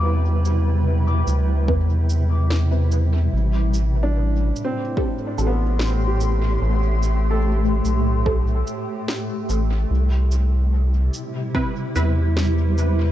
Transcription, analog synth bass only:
X:1
M:4/4
L:1/8
Q:1/4=73
K:Am
V:1 name="Analog synth bass" clef=bass
E,,3 D,, E,,4 | A,,,3 z2 A,,,3 | A,,,3 B,,,2 z2 A,,, | C,,3 z2 E,,3 |]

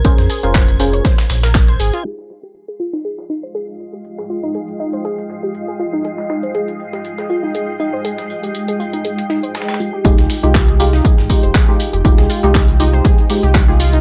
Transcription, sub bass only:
X:1
M:4/4
L:1/16
Q:"Swing 16ths" 1/4=120
K:Fm
V:1 name="Sub bass" clef=bass
B,,, F,, z F,,,4- F,,, z2 B,,,4 A,,, z | z16 | z16 | z16 |
z16 | F,,, C,, z C,,4- C,, z A,,, z F,,, z3 F,,, | F,,, C,, z C,,4- C,, z3 C,,4- C,, |]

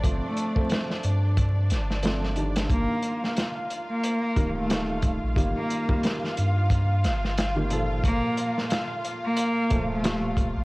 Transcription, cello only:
X:1
M:4/4
L:1/16
Q:"Swing 16ths" 1/4=90
K:Gm
V:1 name="Cello"
z A,3 z12 | B,3 z4 B,4 A,3 z2 | z B,3 z12 | B,3 z4 B,4 A,3 z2 |]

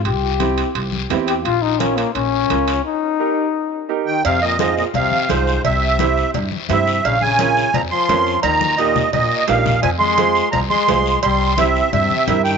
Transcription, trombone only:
X:1
M:4/4
L:1/8
Q:1/4=172
K:Fm
V:1 name="Trombone" clef=bass
G4 z3 G | F E D B, D4 | E6 z E, | C, B,, A,, B,, C,2 A,,2 |
C,4 z2 C,2 | D, D,3 F, F,3 | E,2 B,,2 B,,2 B,,2 | F, A,3 F, A,3 |
G,2 C,2 C,3 E, |]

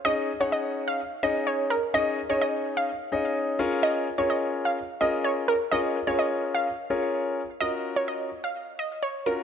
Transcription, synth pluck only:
X:1
M:4/4
L:1/16
Q:1/4=127
K:Bbm
V:1 name="Synth pluck"
e z2 d e z2 f2 z e z d z B z | e z2 d e z2 f3 z6 | e z2 d e z2 f2 z e z d z B z | e z2 d e z2 f3 z6 |
e z2 d e z2 f2 z e z d z B z |]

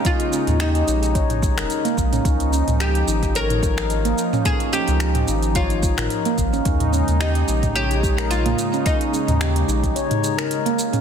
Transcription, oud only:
X:1
M:4/4
L:1/8
Q:"Swing 16ths" 1/4=109
K:Ebmix
V:1 name="Oud"
F2 E4- E z | z2 G2 B4 | A G3 F3 z | z2 E2 G2 F2 |
E6 z2 |]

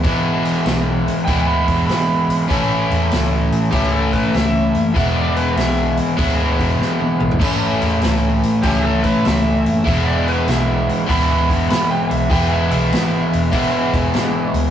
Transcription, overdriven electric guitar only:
X:1
M:4/4
L:1/8
Q:"Swing" 1/4=98
K:Emix
V:1 name="Overdriven electric guitar"
[E,G,B,E]4 [E,G,B,E]4 | [A,,E,A,CE]4 [A,,E,A,CE]4 | [E,G,B,E]4 [E,G,B,E]4 | [A,,E,A,CE]4 [A,,E,A,CE]4 |
[E,G,B,E]4 [E,G,B,E]4 | [E,G,B,E]4 [E,G,B,E]4 |]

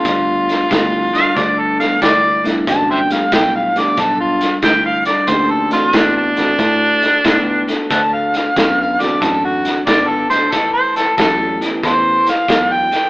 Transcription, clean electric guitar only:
X:1
M:4/4
L:1/8
Q:"Swing" 1/4=92
K:G
V:1 name="Clean electric guitar" clef=bass
[G,,D,]2 [G,,E,] [G,,D,] [G,,D,]2 [G,,E,] [G,,D,] | [G,,D,]2 [G,,E,] [G,,D,] [G,,D,]2 [G,,E,] [G,,D,] | [D,A,]2 [D,B,] [D,A,] [D,A,]2 [D,B,] [D,A,] | [D,A,]2 [D,B,] [D,A,] [D,A,]2 [D,B,] [D,A,] |
[A,,E,]2 [A,,F,] [A,,E,] [A,,E,]2 [A,,F,] [A,,E,] |]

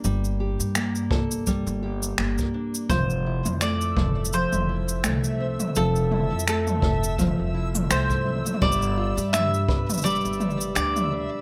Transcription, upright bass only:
X:1
M:4/4
L:1/16
Q:"Swing 16ths" 1/4=84
K:F
V:1 name="Upright bass" clef=bass
G,,,3 G,,3 G,,,3 G,,,3 G,,, z3 | F,,,3 F,,3 F,,,3 F,,,3 C,,3 z | F,,,3 F,,3 F,,,3 F,,,3 C,,3 z | G,,,3 G,,3 G,,,3 G,,,3 D,,3 z |]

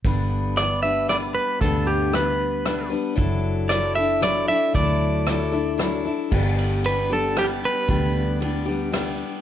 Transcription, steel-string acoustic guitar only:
X:1
M:3/4
L:1/8
Q:1/4=115
K:Glyd
V:1 name="Steel-string acoustic guitar"
[G,,D,G,B,DB]2 [G,B,DB] [G,B,DB] [G,B,DB]2 | [G,,D,G,B,DB]2 [G,B,DB]2 [G,B,DB] [G,B,DB] | [F,DEA]2 [F,DEA] [DEA] [F,DEA] [DEA] | [F,DEA]2 [F,DEA] [DEA] [F,DEA] [DEA] |
[G,,D,G,B,DG]2 [G,B,DG] [G,B,DG] [G,B,DG]2 | [G,,D,G,B,DG]2 [G,B,DG] [G,B,DG] [G,B,DG]2 |]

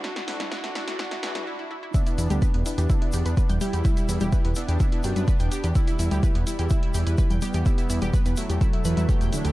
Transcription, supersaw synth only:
X:1
M:4/4
L:1/8
Q:1/4=126
K:Em
V:1 name="Supersaw synth"
[DF] [DF] [DF] [DF] [DF] [DF] z2 | [B,D]3 [B,D]4 [G,E]- | [G,E]3 [B,D]4- [B,D] | [G,E]3 [G,E]4 [G,B,]- |
[G,B,]3 [F,A,]4- [F,A,] |]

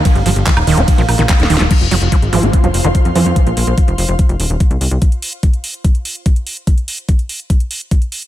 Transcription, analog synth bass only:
X:1
M:4/4
L:1/16
Q:1/4=145
K:Ebdor
V:1 name="Analog synth bass" clef=bass
z =G,,, G,,, G,,, z E,,, E,,, E,,, z B,,, B,,, B,,, z E,,, E,,, E,,, | z F,,, F,,, F,,, z A,,, A,,, A,,, z F,,, F,,, F,,, z F,, F,, F,, | z B,,, B,,, B,,, z F,,, F,,, F,,, z F,,, E,,, E,,, z C,, C,, C,, | z16 |
z16 |]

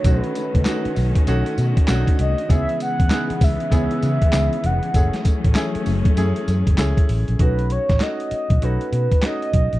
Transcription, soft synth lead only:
X:1
M:4/4
L:1/8
Q:"Swing 16ths" 1/4=98
K:Bmix
V:1 name="Soft synth lead"
B4 z3 d | e f2 e e3 f- | f z6 z | B c d2 B2 d2 |]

